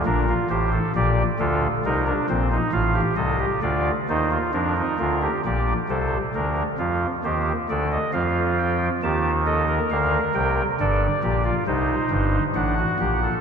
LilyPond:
<<
  \new Staff \with { instrumentName = "Pipe organ" } { \time 3/4 \key bes \major \tempo 4 = 67 << { bes'8 c''8 d''8 a'8 bes'8 c''8 | f''8 ees''8 d''8 c''8 bes'4 | d''8 c''8 bes'4 c''8 d''16 ees''16 | f''8 g''8 a''8 ees''8 f''8 g''8 |
\key g \minor d''4 c''4 fis''4 | } \\ { d'16 f'16 g'16 a'16 g'8 f'8 ees'16 d'16 c'16 ees'16 | f'16 g'16 a'16 g'16 f'8 ees'16 f'16 d'16 ees'16 f'16 g'16 | g'8 a'8 r8 f'8 g'8 a'8 | f'4 g'8 a'16 bes'4~ bes'16 |
a'8 g'16 f'16 ees'4 d'16 fis'16 g'16 a'16 | } >> }
  \new Staff \with { instrumentName = "Pipe organ" } { \clef bass \time 3/4 \key bes \major <bes,, bes,>8 <a,, a,>8 <bes,, bes,>8 <d, d>8 <c, c>8 <bes,, bes,>8 | <a,, a,>8 <c, c>8 <d, d>8 <ees, ees>8 <f, f>8 <d, d>8 | <bes,, bes,>8 <c, c>8 <d, d>8 <f, f>8 <ees, ees>8 <d, d>8 | <f, f>4 <ees, ees>4 <d, d>8 <c, c>8 |
\key g \minor <g,, g,>8 <bes,, bes,>8 <c, c>8 <g,, g,>8 <a,, a,>8 <bes,, bes,>8 | }
>>